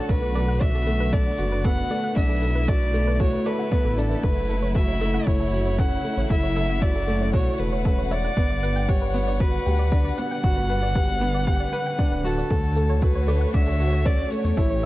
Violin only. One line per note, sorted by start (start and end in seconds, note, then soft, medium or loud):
0.00 0.11 A4 medium
0.10 0.64 B4 loud
0.62 1.15 E5 loud
1.13 1.66 D5 loud
1.65 2.16 F#5 loud
2.17 2.70 E5 loud
2.69 3.22 D5 loud
3.21 3.48 C#5 loud
3.46 3.99 B4 medium
3.98 4.26 A4 medium
4.24 4.78 B4 loud
4.76 5.29 E5 loud
5.27 5.81 C#5 loud
5.80 6.31 F#5 loud
6.31 6.84 E5 loud
6.83 7.33 D5 loud
7.34 7.61 C#5 loud
7.60 8.13 B4 medium
8.12 8.91 D5 loud
8.89 9.43 C#5 loud
9.41 10.20 B4 loud
10.19 12.28 F#5 loud
12.26 13.05 A4 loud
13.03 13.55 B4 medium
13.55 14.08 E5 loud
14.06 14.34 D5 medium
14.32 14.86 C#5 loud